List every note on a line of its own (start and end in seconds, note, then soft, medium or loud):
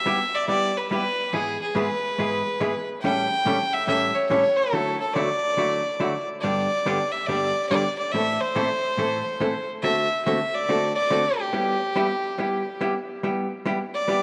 0.00 0.36 E5 loud
0.06 0.18 G3 medium
0.06 0.18 B3 medium
0.06 0.18 E4 medium
0.06 0.19 G4 medium
0.35 0.48 D5 medium
0.48 0.71 G3 medium
0.48 0.71 B3 soft
0.48 0.71 E4 medium
0.48 0.72 G4 medium
0.48 0.79 D5 loud
0.77 0.90 B4 medium
0.91 1.03 G3 medium
0.91 1.03 B3 medium
0.91 1.03 E4 medium
0.91 1.04 G4 medium
0.91 1.34 B4 medium
1.32 1.56 G#2 soft
1.32 1.56 E3 medium
1.32 1.56 G#3 soft
1.32 1.56 B3 medium
1.32 1.56 E4 medium
1.32 1.61 G#4 medium
1.32 1.57 G#4 medium
1.61 1.77 G#4 medium
1.75 1.87 G#2 medium
1.75 1.87 E3 medium
1.75 1.88 G#3 medium
1.75 1.88 B3 medium
1.75 1.88 E4 medium
1.75 1.88 G#4 medium
1.75 2.89 B4 medium
2.18 2.41 G#2 medium
2.18 2.41 E3 medium
2.18 2.41 G#3 medium
2.18 2.42 B3 soft
2.18 2.42 E4 medium
2.18 2.42 G#4 medium
2.60 2.73 G#2 medium
2.60 2.73 E3 medium
2.60 2.73 G#3 medium
2.60 2.73 B3 medium
2.60 2.73 E4 medium
2.60 2.73 G#4 medium
3.01 3.26 A2 soft
3.01 3.26 E3 medium
3.01 3.27 G3 medium
3.01 3.27 C#4 medium
3.01 3.27 E4 medium
3.01 3.27 A4 medium
3.01 3.75 G5 loud
3.45 3.58 A2 medium
3.45 3.58 E3 medium
3.45 3.58 G3 medium
3.45 3.58 C#4 medium
3.45 3.58 E4 medium
3.45 3.58 A4 medium
3.73 3.87 E5 loud
3.87 4.10 A2 medium
3.87 4.11 E3 medium
3.87 4.11 G3 medium
3.87 4.11 C#4 medium
3.87 4.11 E4 medium
3.87 4.11 A4 medium
3.87 4.16 E5 loud
4.15 4.29 C#5 medium
4.29 4.42 A2 medium
4.29 4.43 E3 medium
4.29 4.43 G3 medium
4.29 4.43 C#4 medium
4.29 4.43 E4 medium
4.29 4.43 A4 medium
4.29 4.58 C#5 medium
4.57 4.99 A4 medium
4.73 4.96 D3 soft
4.73 4.96 F#3 medium
4.73 4.96 A3 soft
4.73 4.96 E4 medium
4.73 4.97 F#4 medium
5.00 5.15 A4 medium
5.14 5.28 D3 medium
5.14 5.28 F#3 medium
5.14 5.28 A3 medium
5.14 5.28 E4 medium
5.14 5.28 F#4 medium
5.14 6.28 D5 loud
5.57 5.80 D3 soft
5.57 5.81 F#3 medium
5.57 5.81 A3 medium
5.57 5.81 E4 medium
5.57 5.81 F#4 medium
6.00 6.12 D3 medium
6.00 6.12 F#3 medium
6.00 6.13 A3 medium
6.00 6.13 E4 medium
6.00 6.13 F#4 medium
6.41 6.66 G2 medium
6.41 6.66 D3 medium
6.41 6.66 G3 medium
6.41 6.67 B3 soft
6.41 6.67 D4 medium
6.41 7.13 D5 medium
6.45 6.67 G4 soft
6.86 6.98 G2 medium
6.86 6.98 D3 medium
6.86 6.98 G3 medium
6.86 6.98 B3 medium
6.86 6.98 D4 medium
6.86 6.99 G4 medium
7.12 7.28 E5 medium
7.27 7.51 G2 soft
7.27 7.51 D3 soft
7.27 7.51 G3 medium
7.27 7.51 B3 medium
7.27 7.51 D4 medium
7.27 7.52 G4 medium
7.27 7.68 D5 medium
7.69 7.83 G2 medium
7.69 7.83 D3 medium
7.69 7.83 G3 medium
7.69 7.83 B3 medium
7.69 7.83 D4 medium
7.69 7.83 G4 medium
7.69 7.96 D5 medium
7.98 8.13 D5 medium
8.12 8.36 A2 soft
8.12 8.37 E3 medium
8.12 8.37 A3 medium
8.12 8.37 C4 medium
8.12 8.37 E4 soft
8.12 8.37 A4 medium
8.12 8.43 E5 loud
8.41 9.69 C5 medium
8.55 8.68 A2 medium
8.55 8.68 E3 medium
8.55 8.68 A3 medium
8.55 8.68 C4 medium
8.55 8.68 E4 medium
8.55 8.68 A4 medium
8.97 9.21 A2 medium
8.97 9.21 E3 medium
8.97 9.21 A3 medium
8.97 9.21 C4 medium
8.97 9.21 E4 medium
8.97 9.22 A4 medium
9.40 9.53 A2 medium
9.40 9.53 E3 medium
9.40 9.53 A3 medium
9.40 9.53 C4 medium
9.40 9.53 E4 medium
9.40 9.53 A4 medium
9.82 10.06 D3 soft
9.82 10.07 A3 soft
9.82 10.07 C4 soft
9.82 10.07 F#4 medium
9.82 10.07 A4 medium
9.82 10.23 E5 medium
10.25 10.38 D3 medium
10.25 10.38 A3 medium
10.25 10.39 C4 medium
10.25 10.39 F#4 medium
10.25 10.39 A4 medium
10.25 10.56 E5 medium
10.55 10.95 D5 loud
10.69 10.92 D3 medium
10.69 10.92 A3 medium
10.69 10.92 C4 medium
10.69 10.92 F#4 medium
10.69 10.92 A4 medium
10.96 11.41 D5 loud
11.10 11.23 D3 medium
11.10 11.23 A3 medium
11.10 11.23 C4 medium
11.10 11.24 F#4 medium
11.10 11.24 A4 medium
11.40 12.81 G4 medium
11.53 11.76 G3 soft
11.53 11.76 B3 medium
11.53 11.77 E4 soft
11.53 11.77 G4 medium
11.96 12.08 G3 medium
11.96 12.08 B3 medium
11.96 12.09 E4 medium
11.96 12.09 G4 medium
12.38 12.61 G3 medium
12.38 12.62 B3 soft
12.38 12.62 E4 medium
12.38 12.62 G4 medium
12.81 12.93 G3 medium
12.81 12.93 B3 medium
12.81 12.93 E4 medium
12.81 12.94 G4 medium
13.23 13.46 G3 medium
13.23 13.47 B3 medium
13.23 13.47 E4 medium
13.23 13.47 G4 medium
13.66 13.78 G3 medium
13.66 13.78 B3 medium
13.66 13.78 E4 medium
13.66 13.79 G4 medium
13.95 14.23 D5 loud
14.08 14.23 G3 medium
14.08 14.23 B3 medium
14.08 14.23 E4 medium
14.08 14.23 G4 medium